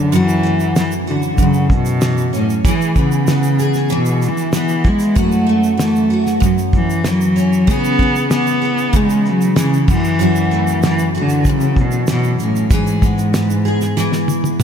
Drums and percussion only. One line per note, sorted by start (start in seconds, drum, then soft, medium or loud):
0.13 shaker medium
0.29 shaker medium
0.44 shaker medium
0.60 shaker soft
0.76 snare loud
0.76 shaker medium
0.92 shaker soft
1.07 shaker medium
1.22 shaker soft
1.38 kick medium
1.38 shaker medium
1.53 shaker medium
1.70 kick medium
1.70 shaker medium
1.85 shaker soft
1.85 shaker medium
2.01 snare loud
2.01 shaker medium
2.18 shaker soft
2.33 shaker medium
2.33 shaker soft
2.50 shaker soft
2.65 kick loud
2.65 shaker medium
2.82 shaker soft
2.96 kick medium
2.96 shaker soft
3.12 shaker soft
3.27 snare loud
3.27 shaker medium
3.43 shaker medium
3.59 shaker medium
3.74 snare soft
3.74 shaker soft
3.89 shaker medium
4.06 shaker medium
4.22 shaker soft
4.22 shaker medium
4.37 shaker soft
4.53 snare loud
4.53 shaker medium
4.68 shaker soft
4.85 kick loud
4.85 shaker medium
4.99 shaker soft
4.99 shaker medium
5.16 kick loud
5.16 shaker medium
5.32 shaker soft
5.48 shaker medium
5.63 shaker soft
5.79 snare loud
5.79 shaker medium
5.96 shaker medium
6.10 shaker medium
6.26 snare soft
6.26 shaker soft
6.42 kick medium
6.42 shaker medium
6.58 shaker medium
6.73 kick medium
6.73 shaker medium
6.90 shaker soft
7.04 snare loud
7.04 shaker medium
7.21 shaker soft
7.36 shaker medium
7.36 shaker soft
7.53 shaker soft
7.68 kick loud
7.68 shaker medium
7.70 shaker medium
7.84 shaker soft
7.99 kick medium
7.99 shaker medium
8.16 shaker soft
8.31 snare loud
8.31 shaker medium
8.47 shaker medium
8.62 shaker medium
8.78 shaker soft
8.93 kick loud
8.93 shaker medium
9.10 shaker medium
9.26 shaker medium
9.41 shaker soft
9.56 snare loud
9.56 shaker medium
9.74 shaker soft
9.88 kick loud
9.88 crash medium
9.88 shaker soft
10.04 shaker medium
10.20 shaker medium
10.36 shaker soft
10.52 shaker medium
10.67 shaker medium
10.82 snare loud
10.82 shaker medium
10.99 shaker medium
11.15 shaker medium
11.29 shaker soft
11.45 kick loud
11.45 shaker medium
11.61 shaker medium
11.76 kick medium
11.76 shaker medium
11.91 shaker soft
12.07 snare loud
12.07 shaker medium
12.24 shaker soft
12.39 shaker medium
12.39 shaker soft
12.56 shaker medium
12.70 kick loud
12.70 shaker medium
12.87 shaker soft
13.02 kick medium
13.02 shaker soft
13.18 shaker medium
13.18 shaker soft
13.34 snare loud
13.34 shaker medium
13.50 shaker soft
13.66 shaker medium
13.81 snare soft
13.81 shaker soft
13.81 shaker medium
13.97 snare medium
13.97 shaker medium
14.12 snare medium
14.12 shaker medium
14.28 high tom medium
14.28 shaker medium
14.44 high tom medium
14.44 shaker soft
14.60 mid tom loud